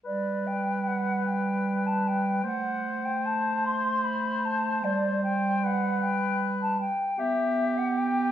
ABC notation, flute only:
X:1
M:3/4
L:1/8
Q:1/4=151
K:G
V:1 name="Flute"
d2 g2 f2 | g3 a g2 | f3 g a2 | c'2 b2 a2 |
d2 g2 f2 | g3 a g2 | e3 f g2 |]